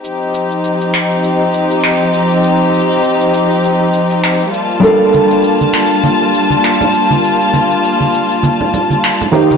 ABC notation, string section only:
X:1
M:4/4
L:1/8
Q:"Swing 16ths" 1/4=100
K:Gm
V:1 name="String section"
[F,CEG]8- | [F,CEG]6- [F,CEG] [G,B,Fa]- | [G,B,Fa]8- | [G,B,Fa]6- [G,B,Fa] [F,CEG] |]